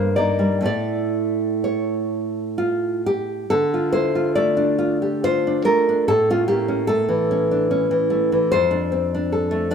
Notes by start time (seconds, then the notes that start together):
Already playing: G2 A#3 C5
0.16 A#3 D#4 D5
0.39 G3
0.61 A2 A3 E4
0.66 D5
1.64 C#5
2.58 F4
3.06 G4
3.50 D3 A4
3.74 F4
3.93 E4 C5
4.15 F4
4.35 A3 D5
4.57 D4
4.79 F4
5.02 G4
5.24 F4 C5
5.47 D4
5.65 A3 A#4
5.89 D4
6.08 A2 A4
6.30 C#4 F4
6.48 A#3 G4
6.68 C#4
6.87 A3 A4
7.09 E3
7.31 C#4
7.51 D4
7.71 C#4
7.91 E3
8.10 A3
8.32 E3
8.52 F2 C5
8.71 D4
8.92 C4
9.15 D4
9.32 A4
9.51 A3
9.71 D4 D5